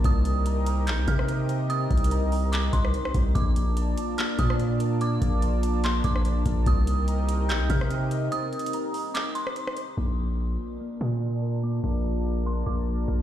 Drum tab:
HH |x-----x-----x-----x-----x-----x-----x-----x-----|x-----x-x-x-x-----o-----x-----x-----x-----x-----|x-----x-----x-----x-----x-----x-----x-----x-----|x-----x-----x-----x-----x-----x-----x-----x-----|
CP |------------------------x-----------------------|------------------------x-----------------------|------------------------x-----------------------|------------------------x-----------------------|
SD |---------------------------------r--------------|---------------------------------r-----r--------|---------------------------------r--------------|---------------------------------r--------------|
BD |o-----------------------------o-----------------|------o-----------------------o-----------o-----|o-----------------------------o-----------------|------o-----------------------o-----------o-----|

HH |x-----x-----x-----x-----x-----x-----x-----x-----|x-----x-x-x-x-----o-----x-----x-----x-----x-----|------------------------------------------------|------------------------------------------------|
CP |------------------------x-----------------------|------------------------x-----------------------|------------------------------------------------|------------------------------------------------|
SD |---------------------------------r--------------|---------------------------------r-----r--------|------------------------------------------------|------------------------------------------------|
BD |o-----------------------------o-----------------|------------------------------------------------|------------------------------------------------|------------------------------------------------|